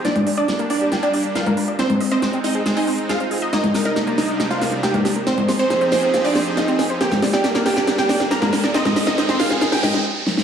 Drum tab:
HH |xxo-xxoxxxoxxxox|xxoxxxoxxooxxxo-|xxoxxxoxxxoxxxo-|xxoxxxoxxoo-xxox|
SD |o---o---o---o---|o---o---o---o---|o-o-o-o-o-o-o-o-|o-o-o-o-o-o-o-o-|
CG |-o-----------o--|-o--------------|-o-----------o--|-o--------------|

HH |xxoxxxoxxxoxxxox|xxoxxxo-xoo-----|
SD |oooooooooooooooo|oooooooooooo--oo|
CG |-o-----------o--|-o--------o-----|